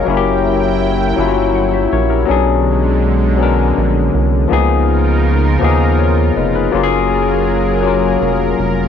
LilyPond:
<<
  \new Staff \with { instrumentName = "Analog synth pad" } { \time 6/8 \key fis \major \tempo 4. = 54 <fis e' ais' g''>2. | <d gis>2. | <cis dis' eis' ais'>2. | <fis gis' ais'>2. | }
  \new Staff \with { instrumentName = "Tine electric piano" } { \time 6/8 \key fis \major << { <cis'' eis''>16 r4. r16 fis''16 <cis'' e''>16 <ais' cis''>16 <g' ais'>16~ | <g' ais'>16 r2 r8. | r2 <ais' cis''>8 <b' dis''>16 <gis' b'>16~ | <gis' b'>16 r2 r8. | } \\ { <fis ais cis' e' fis' g'>4. <fis ais cis' e' eis' fis'>4. | <fis b cis' d' gis'>4. <fis b cis' d' ais'>4. | <eis ais b dis' gis'>4. <eis ais b dis' gis'>4. | <fis ais cis' eis' g' gis'>4. <fis ais cis' eis' ais'>4. | } >> }
  \new Staff \with { instrumentName = "Analog synth bass" } { \clef bass \time 6/8 \key fis \major fis,,4. g,,4 ais,,8 | b,,2 ais,,8 bis,,8 | cis,4. dis,4 eis,,8 | fis,,2 eis,,8 eis,,8 | }
>>